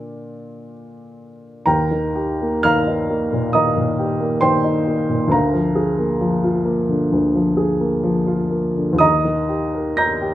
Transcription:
0.00 1.62 A#2 soft
0.00 1.62 D3 soft
0.00 1.62 D4 soft
0.00 1.62 F4 soft
0.00 0.71 D5 medium
1.66 3.50 D#2 soft
1.66 2.60 A#4 medium
1.66 2.60 G5 medium
1.66 2.63 A#5 medium
1.91 2.31 D#3 soft
2.15 2.55 G4 soft
2.41 2.79 A#3 soft
2.63 3.01 D#3 soft
2.63 3.50 F5 medium
2.63 3.50 A#5 medium
2.63 3.53 F6 medium
2.87 3.23 D#4 soft
3.10 3.45 A#3 soft
3.32 3.67 A#2 soft
3.53 3.90 D#3 soft
3.53 4.40 D#5 medium
3.53 4.40 A#5 soft
3.53 4.43 D#6 medium
3.76 4.12 A#2 soft
3.99 4.34 G4 soft
4.20 4.57 A#3 soft
4.41 4.79 D#3 soft
4.41 5.28 C5 medium
4.41 5.28 G5 medium
4.41 5.31 C6 medium
4.64 5.01 D#4 soft
4.87 5.23 A#3 soft
5.09 5.32 A#2 soft
5.28 7.07 D2 soft
5.28 8.99 A#5 medium
5.33 8.97 A#4 soft
5.33 8.98 F5 soft
5.54 5.90 F3 soft
5.75 6.12 G#4 soft
5.98 6.35 A#3 soft
6.21 6.58 F3 soft
6.44 6.80 F4 soft
6.65 7.03 A#3 soft
6.89 7.26 D3 soft
7.12 8.97 D2 soft
7.35 7.72 F3 soft
7.57 7.94 G#4 soft
7.80 8.17 A#3 soft
8.04 8.42 F3 soft
8.26 8.66 F4 soft
8.50 8.91 A#3 soft
8.76 9.01 D3 soft
8.93 10.34 D#2 soft
8.98 9.95 D#5 medium
8.98 9.95 A#5 medium
8.98 9.98 D#6 medium
9.25 9.65 D#3 soft
9.49 9.89 G4 soft
9.75 10.13 A#4 soft
9.97 10.34 D#4 soft
9.97 10.34 A#5 medium
9.97 10.34 G6 medium
9.97 10.34 A#6 medium
10.22 10.34 G4 soft

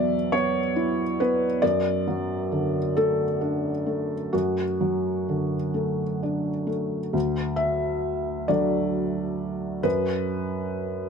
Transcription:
0.00 1.58 E2 soft
0.00 0.58 B2 soft
0.00 0.14 F#3 soft
0.00 0.33 B3 soft
0.00 0.32 D5 medium
0.00 1.64 E5 medium
0.32 1.02 B3 soft
0.32 1.19 C#5 medium
0.76 1.45 E4 soft
1.20 1.63 B3 soft
1.20 1.63 B4 medium
1.62 4.29 F#2 soft
1.62 2.94 D5 medium
2.08 2.77 F#3 soft
2.52 3.23 D3 soft
2.97 3.69 A3 soft
2.97 4.34 A4 medium
3.41 4.14 D4 soft
3.86 4.61 A3 soft
4.33 7.11 F#2 soft
4.33 6.69 F#4 soft
4.81 5.56 F#3 soft
5.29 6.03 D3 soft
5.74 6.49 A3 soft
6.23 6.97 D4 soft
6.67 7.14 A3 soft
7.13 8.46 D2 soft
7.56 8.49 E5 medium
8.48 9.80 F#3 soft
8.48 9.80 A3 soft
8.48 9.81 D4 soft
8.48 9.83 D5 medium
9.83 11.09 F#2 soft
9.83 11.09 B4 medium

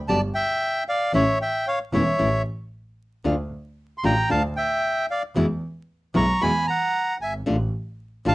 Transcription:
0.08 0.30 G1 medium
0.08 0.17 B2 medium
0.08 0.17 D3 medium
0.08 0.17 G3 medium
0.08 0.17 B3 medium
0.08 0.17 G4 medium
0.08 0.21 D5 medium
0.08 0.20 A5 medium
0.34 0.84 E5 medium
0.34 0.83 G5 medium
0.88 1.13 D5 medium
0.88 1.12 F5 medium
1.13 1.35 A1 medium
1.13 1.22 E3 medium
1.13 1.23 A3 medium
1.13 1.23 C#4 medium
1.13 1.23 E4 medium
1.13 1.39 C#5 medium
1.13 1.38 E5 medium
1.42 1.66 E5 medium
1.42 1.68 G5 medium
1.67 1.79 C#5 medium
1.67 1.79 F5 medium
1.93 2.15 E1 medium
1.93 2.01 E3 medium
1.93 2.02 A3 medium
1.93 2.02 C#4 medium
1.93 2.02 E4 medium
1.93 2.42 C#5 medium
1.93 2.42 E5 medium
2.19 2.41 A1 medium
2.19 2.28 E3 medium
2.19 2.28 A3 medium
2.19 2.28 C#4 medium
2.19 2.28 E4 medium
3.24 3.47 D2 medium
3.24 3.34 D3 medium
3.24 3.34 A3 medium
3.24 3.34 D4 medium
3.24 3.34 F4 medium
3.98 4.04 C6 medium
4.04 4.26 A1 medium
4.04 4.13 D3 medium
4.04 4.13 A3 medium
4.04 4.13 D4 medium
4.04 4.13 F4 medium
4.04 4.30 G5 medium
4.04 4.29 A#5 medium
4.29 4.53 D2 medium
4.29 4.39 D3 medium
4.29 4.39 A3 medium
4.29 4.39 D4 medium
4.29 4.39 F4 medium
4.29 4.43 F5 medium
4.29 4.42 A5 medium
4.56 5.06 E5 medium
4.56 5.06 G5 medium
5.11 5.23 D5 soft
5.11 5.22 F5 medium
5.35 5.58 E2 medium
5.35 5.45 B2 medium
5.35 5.45 E3 medium
5.35 5.45 G#3 medium
5.35 5.45 B3 medium
5.35 5.45 E4 medium
6.14 6.37 B1 medium
6.14 6.24 B2 medium
6.14 6.24 E3 medium
6.14 6.24 G#3 medium
6.14 6.24 B3 medium
6.14 6.24 E4 medium
6.14 6.40 A#5 medium
6.14 6.43 C#6 medium
6.41 6.64 E2 medium
6.41 6.50 B2 medium
6.41 6.50 E3 medium
6.41 6.51 G#3 medium
6.41 6.51 B3 medium
6.41 6.51 E4 medium
6.41 6.67 G#5 medium
6.41 6.66 B5 medium
6.67 7.18 F#5 medium
6.67 7.16 A#5 medium
7.20 7.46 G1 medium
7.20 7.34 E5 soft
7.20 7.33 G#5 medium
7.46 7.68 A1 medium
7.46 7.55 D3 medium
7.46 7.55 A3 medium
7.46 7.55 D4 medium
7.46 7.56 F4 medium
8.25 8.35 A1 medium
8.25 8.34 D3 medium
8.25 8.34 A3 medium
8.25 8.35 D4 medium
8.25 8.35 F4 medium
8.25 8.35 F5 medium
8.25 8.35 A5 medium

